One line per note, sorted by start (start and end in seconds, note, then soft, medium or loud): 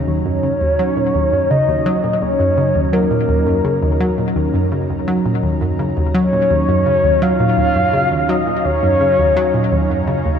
0.00 10.39 F#3 medium
0.00 10.39 C#4 medium
0.00 10.39 D#4 medium
0.00 10.39 A#5 medium
0.07 0.20 D#2 medium
0.07 1.52 C#5 loud
0.25 0.37 F#2 medium
0.43 0.60 C#3 medium
0.61 0.78 D#2 medium
0.79 0.91 F#3 loud
0.97 1.09 A#2 medium
1.15 1.27 D#2 medium
1.33 1.45 F#2 medium
1.50 1.68 C#3 medium
1.50 2.23 D#5 loud
1.69 1.85 D#2 medium
1.86 1.98 F#3 loud
2.04 2.16 A#2 medium
2.22 2.34 D#2 medium
2.22 2.95 C#5 loud
2.40 2.52 F#2 medium
2.58 2.74 C#3 medium
2.75 2.92 D#2 medium
2.93 3.05 F#3 loud
2.93 4.36 A#4 loud
3.11 3.23 A#2 medium
3.29 3.41 D#2 medium
3.47 3.59 F#2 medium
3.65 3.82 C#3 medium
3.83 3.99 D#2 medium
4.01 4.13 F#3 loud
4.18 4.30 A#2 medium
4.36 4.48 D#2 medium
4.54 4.66 F#2 medium
4.72 4.89 C#3 medium
4.90 5.07 D#2 medium
5.08 5.20 F#3 loud
5.26 5.38 A#2 medium
5.43 5.55 D#2 medium
5.61 5.73 F#2 medium
5.79 5.96 C#3 medium
5.97 6.14 D#2 medium
6.15 6.27 F#3 loud
6.15 7.24 C#5 loud
6.33 6.45 A#2 medium
6.51 6.63 D#2 medium
6.69 6.81 F#2 medium
6.86 7.03 C#3 medium
7.04 7.21 D#2 medium
7.22 7.34 F#3 loud
7.22 8.31 F5 loud
7.40 7.52 A#2 medium
7.58 7.70 D#2 medium
7.76 7.88 F#2 medium
7.93 8.10 C#3 medium
8.12 8.28 D#2 medium
8.29 8.41 F#3 loud
8.29 8.67 D#5 medium
8.47 8.59 A#2 medium
8.65 8.77 D#2 medium
8.65 10.08 C#5 loud
8.83 8.95 F#2 medium
9.01 9.18 C#3 medium
9.19 9.35 D#2 medium
9.37 9.48 F#3 loud
9.54 9.66 A#2 medium
9.72 9.84 D#2 medium
9.90 10.02 F#2 medium
10.07 10.24 C#3 medium
10.25 10.39 D#2 medium